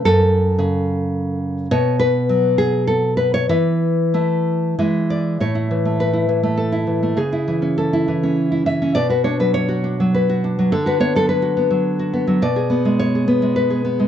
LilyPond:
\new Staff \with { instrumentName = "Nylon-string guitar" } { \time 3/4 \key a \major \tempo 4 = 103 << { a'2~ a'8 r8 | cis''8 b'4 gis'8 a'8 b'16 cis''16 | b'2~ b'8 d''8 | cis''4 b'4 a'4 |
gis'4 a'4 r8 e''8 | d''16 b'16 cis''16 b'16 cis''4 b'4 | a'16 b'16 cis''16 a'16 b'4 r4 | d''4 cis''4 b'4 | } \\ { fis,4 cis2 | b,4 fis2 | e4 <a e'>4 <e gis e'>4 | a,16 e'16 e16 a8 e'16 e16 a8 e'16 e16 a16 |
cis16 e'16 e16 cis'8 e'16 e16 cis'8 e'16 e16 cis'16 | b,16 fis'16 d'16 fis8 fis'16 d'16 fis8 fis'16 d'16 fis16 | d16 fis'16 b16 fis8 fis'16 b16 fis8 fis'16 b16 fis16 | b,16 gis'16 b16 gis8 gis'16 b16 gis8 gis'16 b16 gis16 | } >> }